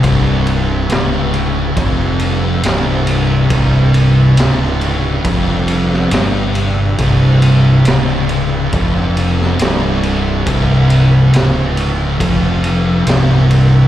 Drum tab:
RD |x-x-x-x-x-x-x-x-|x-x-x-x-x-x-x-x-|x-x-x-x-x-x-x-x-|x-x-x-x-x-x-x-x-|
SD |----o-------o---|----o------oo---|----o------oo---|----o-------o---|
BD |o-------o-------|o-------o-------|o-------o-------|o-------o-------|